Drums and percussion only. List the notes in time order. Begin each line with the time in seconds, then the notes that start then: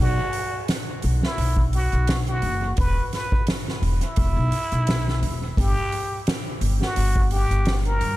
0.33 open hi-hat
0.68 snare, open hi-hat
1.02 open hi-hat
1.23 snare
1.38 open hi-hat
1.57 kick
1.73 open hi-hat
1.92 closed hi-hat
2.07 snare, open hi-hat
2.27 closed hi-hat
2.42 open hi-hat
2.77 kick, open hi-hat
3.13 snare, open hi-hat
3.32 kick
3.47 snare, open hi-hat
3.68 snare
3.83 open hi-hat
4.01 closed hi-hat
4.16 kick, open hi-hat
4.52 open hi-hat
4.72 closed hi-hat
4.87 snare, open hi-hat
5.08 snare
5.23 open hi-hat
5.57 kick, open hi-hat
5.92 open hi-hat
6.27 snare, open hi-hat
6.61 open hi-hat
6.82 snare
6.96 open hi-hat
7.16 kick
7.31 open hi-hat
7.51 closed hi-hat
7.65 snare, open hi-hat
7.85 closed hi-hat
8.01 open hi-hat